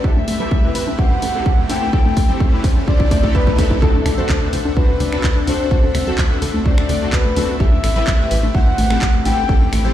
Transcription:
Already playing: riser
0.04 A1 A3 C4 E4 G4 A4 B4 E5, kick
0.16 A3, high conga
0.28 A1 A3, open hi-hat
0.40 C4 E4 G4 A4 B4, low conga
0.51 A1 A3, kick, high conga
0.64 A3 C4 E4 G4 B4
0.75 A1 B4, open hi-hat
0.87 A3, high conga
0.99 A1 A3 C4 E4 G4 C5 F#5, kick
1.22 A1 A3, open hi-hat, high conga
1.35 A3 C4 E4 G4 A4
1.46 A1 G4, kick
1.58 A3
1.69 A2 A3 C4 E4 G4 A4 G5, open hi-hat, high conga
1.82 A3
1.93 A1 C4 E4 G4 A4, kick
2.05 A3, high conga
2.17 A1 A3, kick, open hi-hat
2.29 C4 E4 G4 A4 C5, low conga
2.40 A1 A3, kick, high conga
2.53 A3 C4 E4 G4 B4
2.64 A1 C5, kick, open hi-hat
2.76 A3, high conga
2.88 A1 A3 C4 E4 G4 C5 D5, kick
3.00 kick
3.11 A1 A3, kick, open hi-hat, high conga
3.24 A3 C4 E4 G4 A4, kick
3.35 A1 B4 E5, kick
3.47 A3, kick
3.58 A1 A3 C4 E4 G4 A4, kick, open hi-hat, high conga, low conga
3.71 A3, kick
3.82 D2 C4 D4 F#4 A4 E5 F#5, kick, impact
3.94 D4, high conga
4.06 D2 D4, finger snap, open hi-hat
4.18 C4 D4 F#4 A4 C5, low conga
4.29 D2 D4, kick, clap, high conga
4.42 C4 D4 F#4 B4
4.53 D2 C5, open hi-hat
4.65 D4, high conga
4.77 D2 C4 D4 F#4 B4 C5, kick
5.00 D2 D4, open hi-hat, high conga
5.13 C4 D4 F#4 A4, finger snap
5.24 D2 A4, kick, clap
5.36 D4
5.47 D2 C4 D4 F#4 A4 C5, open hi-hat, high conga
5.60 D4
5.71 D2 C4 D4 F#4 A4, kick
5.83 A3, high conga
5.95 D2 A3, finger snap, open hi-hat
6.07 C4 D4 F#4 A4, low conga
6.18 D2 A3, kick, clap, high conga
6.31 A3 C4 D4 F#4 B4
6.42 D2 A4, open hi-hat
6.54 A3, high conga
6.66 D2 A3 C4 D4 F#4 C5 D5, kick
6.78 finger snap
6.89 D2 A3, open hi-hat, high conga
7.02 A3 C4 D4 F#4 A4
7.13 D2 F#4 B4, kick, clap
7.25 A3
7.36 D2 A3 C4 D4 F#4 A4, open hi-hat, high conga, low conga
7.49 A3
7.60 A1 A3 C4 E4 G4 A4 B4 E5, kick
7.72 A3, high conga
7.84 A1 A3, finger snap, open hi-hat
7.96 C4 E4 G4 A4 B4, low conga
8.07 A1 A3, kick, clap, high conga
8.20 A3 C4 E4 G4 B4
8.31 A1 B4, open hi-hat
8.43 A3, high conga
8.55 A1 A3 C4 E4 G4 C5 F#5, kick
8.78 A1 A3, open hi-hat, high conga
8.90 A3 C4 E4 G4 A4, finger snap
9.02 A1 G4, kick, clap
9.14 A3
9.25 A1 A3 C4 E4 G4 A4 G5, open hi-hat, high conga
9.38 A3
9.49 A1 C4 E4 G4 A4, kick
9.61 A3, high conga
9.73 A1 A3, finger snap, open hi-hat
9.85 C4 E4 G4 A4 C5, low conga

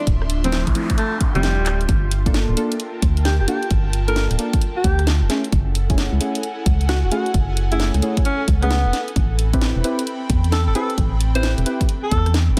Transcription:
Already playing: D4 F4 E5 C6
0.07 D1, kick, closed hi-hat, noise sweep
0.22 cross-stick
0.30 open hi-hat
0.44 F3 A3 C4 E4, closed hi-hat
0.52 snare, closed hi-hat
0.67 A1, kick, cross-stick, open hi-hat
0.75 F3 A3 C4 E4, open hi-hat
0.90 kick, closed hi-hat
0.98 A3, closed hi-hat
1.21 kick, open hi-hat
1.35 F1 F3 G3 A3 C4 E4, cross-stick, closed hi-hat
1.43 snare, closed hi-hat
1.58 D1
1.66 clap, open hi-hat
1.81 closed hi-hat
1.89 G1, kick, closed hi-hat
1.99 A#4
2.11 open hi-hat
2.26 A#3 D4 F4 A4 A5, kick, closed hi-hat
2.34 G5, snare, closed hi-hat
2.49 D1
2.57 A#3 D4 F4 A4, open hi-hat
2.72 closed hi-hat
2.80 closed hi-hat
3.02 D2, kick, open hi-hat
3.17 closed hi-hat
3.25 G4, snare, closed hi-hat
3.40 F1 G4
3.48 A#3 D4 F4 G4 A4, open hi-hat
3.63 closed hi-hat
3.71 G1, kick, closed hi-hat
3.93 open hi-hat
4.08 A#3 D4 F4 A4 A#4, closed hi-hat
4.16 snare, closed hi-hat
4.31 D1, cross-stick, open hi-hat
4.39 A#3 D4 F4 A4, open hi-hat
4.53 kick, closed hi-hat
4.61 closed hi-hat
4.76 G4
4.84 D2, kick, open hi-hat
4.99 cross-stick, closed hi-hat
5.07 snare, closed hi-hat
5.22 F1
5.30 A3 C#4 E4 G#4, snare, open hi-hat
5.34 A4
5.44 F#5, closed hi-hat
5.52 F#1, kick, closed hi-hat
5.75 G#5, open hi-hat
5.90 A3 C#4 E4 G#4, kick, closed hi-hat
5.98 snare, closed hi-hat
6.13 C#2
6.20 A3 C#4 E4 G#4, open hi-hat
6.35 closed hi-hat
6.43 closed hi-hat
6.66 C#2, kick, open hi-hat
6.81 closed hi-hat
6.89 F#4, snare, closed hi-hat
7.03 E1 F#4
7.11 A3 C#4 E4 F#4 G#4, open hi-hat
7.26 closed hi-hat
7.34 F#1, kick, closed hi-hat
7.57 open hi-hat
7.72 A3 C#4 E4 G#4, closed hi-hat
7.80 snare, closed hi-hat
7.94 C#2, cross-stick, open hi-hat
8.02 A3 C#4 E4 G#4, open hi-hat
8.17 kick, closed hi-hat
8.25 C#4, closed hi-hat
8.48 C#2, kick, open hi-hat
8.62 A3 B3 C#4 E4 G#4, cross-stick, closed hi-hat
8.71 snare, closed hi-hat
8.85 E1
8.93 snare, open hi-hat
9.08 closed hi-hat
9.16 A1 C4, kick, closed hi-hat
9.28 B5
9.34 G5
9.39 open hi-hat
9.53 C4 E4 G4 B4, kick, closed hi-hat
9.61 snare, closed hi-hat
9.76 E1
9.84 C4 E4 G4 B4, open hi-hat
9.99 closed hi-hat
10.07 closed hi-hat
10.30 E2, kick, open hi-hat
10.44 closed hi-hat
10.52 A4, snare, closed hi-hat
10.67 G1 A4
10.75 C4 E4 G4 A4 B4, open hi-hat
10.90 closed hi-hat
10.98 A1, kick, closed hi-hat
11.21 open hi-hat
11.35 C4 E4 G4 B4 C5, closed hi-hat
11.43 snare, closed hi-hat
11.58 E1, cross-stick, open hi-hat
11.66 C4 E4 G4 B4, open hi-hat
11.81 kick, closed hi-hat
11.89 closed hi-hat
12.03 A4
12.11 E2, kick, open hi-hat
12.26 cross-stick, closed hi-hat
12.34 snare, closed hi-hat
12.49 G1

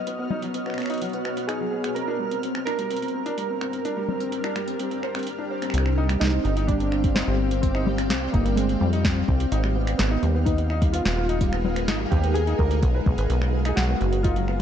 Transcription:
Already playing: B3 F#4 C#5 D#5 F6
0.07 B3, closed hi-hat
0.19 B3
0.31 D#4, low conga
0.42 F#3, closed hi-hat
0.54 B3, closed hi-hat
0.66 B3, finger snap
0.70 finger snap
0.74 B3, finger snap
0.78 finger snap, closed hi-hat
0.80 finger snap, closed hi-hat
0.83 closed hi-hat
0.85 finger snap, closed hi-hat
0.87 D#4, closed hi-hat
0.90 closed hi-hat
0.94 closed hi-hat
0.98 F#3, closed hi-hat
1.02 closed hi-hat
1.05 closed hi-hat
1.09 B3, closed hi-hat
1.13 closed hi-hat
1.25 B3, finger snap
1.37 B3, closed hi-hat
1.47 D#4 G#4, finger snap, closed hi-hat
1.60 F#3
1.71 B3 G#4
1.84 B3, finger snap, closed hi-hat
1.95 G3 C4 A#4, closed hi-hat
2.08 D4
2.17 G3 D4 A#4
2.28 C4 G4, closed hi-hat
2.43 C4, closed hi-hat
2.55 C4, finger snap
2.65 D4 A#4, finger snap, closed hi-hat
2.79 G3, closed hi-hat
2.90 C4, closed hi-hat
2.96 closed hi-hat
3.02 C4, closed hi-hat
3.08 closed hi-hat
3.14 C4
3.26 D4, closed hi-hat
3.38 G3, closed hi-hat
3.50 C4
3.61 C4, finger snap
3.73 C4, closed hi-hat
3.85 D4, closed hi-hat
3.97 G3
4.09 C4, low conga
4.20 C4, closed hi-hat
4.32 C4, closed hi-hat
4.44 D4, finger snap
4.56 G3, finger snap, closed hi-hat
4.68 C4, closed hi-hat
4.79 C4, closed hi-hat
4.91 C4, closed hi-hat
5.03 C5, finger snap
5.15 C4, finger snap, closed hi-hat
5.19 closed hi-hat
5.23 closed hi-hat
5.27 closed hi-hat
5.39 D4
5.50 C5
5.62 C4, finger snap, closed hi-hat
5.70 C2 C4 F5, finger snap, closed hi-hat
5.74 C4, finger snap
5.86 C4, finger snap
5.94 D#4 D5
6.09 G3, finger snap, closed hi-hat
6.19 C2 C4 D#4 G5, snare, closed hi-hat
6.24 snare
6.27 snare
6.30 C4, snare
6.44 G1 C4 D#4, closed hi-hat
6.57 D#4, closed hi-hat
6.67 G3 D4, kick, closed hi-hat
6.80 C4, closed hi-hat
6.92 C4, finger snap
7.04 C4, kick, closed hi-hat
7.14 C4 D#4, snare, closed hi-hat
7.27 G1 G3
7.39 C4
7.51 C4, closed hi-hat
7.62 C4, kick, closed hi-hat
7.75 D#4, finger snap
7.87 G3, low conga
7.98 C4, finger snap, closed hi-hat
8.10 C2 C4, snare, closed hi-hat
8.22 C4
8.32 G1 A#3 D#4, kick, closed hi-hat
8.46 G3, closed hi-hat
8.56 G#3 C4, closed hi-hat
8.69 C4, closed hi-hat
8.80 F2 G3 C4
8.87 F3
8.93 G3 D#4, closed hi-hat
9.05 G3, kick, snare, closed hi-hat
9.16 C4
9.28 C2 C4, kick
9.40 C4, closed hi-hat
9.52 G#1 G#3 D#4, closed hi-hat
9.64 G3, finger snap
9.76 B3
9.87 B3 D#4, finger snap, closed hi-hat
9.98 G#1 B3, snare, closed hi-hat
10.11 D#4 A#4
10.23 D#2 G3, closed hi-hat
10.35 B3
10.43 B3 D#4 G#4, kick, closed hi-hat
10.58 B3, closed hi-hat
10.70 D#4, finger snap
10.82 G3, kick, closed hi-hat
10.92 B3 F4, closed hi-hat
11.05 D#1 B3, snare
11.16 B3 F4
11.29 D#4, closed hi-hat
11.41 G3, kick, closed hi-hat
11.53 B3, finger snap
11.65 B3, low conga
11.76 B3, finger snap, closed hi-hat
11.88 G#1 D#4, snare, closed hi-hat
12.00 G3
12.10 D#2 B3 G4, kick, closed hi-hat
12.24 B3, closed hi-hat
12.34 B3 G#4, closed hi-hat
12.47 D#4, closed hi-hat
12.58 D2 G4 A#4, kick
12.71 G4, closed hi-hat
12.83 B1 B3, kick, closed hi-hat
12.94 B4
13.06 B1 B3, kick
13.18 G#1 B4, closed hi-hat
13.30 B1 B3, closed hi-hat
13.42 B3, finger snap
13.50 F#3 B3
13.65 D#4 G#4 D#5, finger snap, closed hi-hat
13.76 B1 F#3 F#4, snare, closed hi-hat
13.89 B3
13.95 C#5
14.01 F#1 B3, closed hi-hat
14.13 B3, closed hi-hat
14.23 D#4 F4, kick, closed hi-hat
14.36 F#3, closed hi-hat
14.48 B3, finger snap

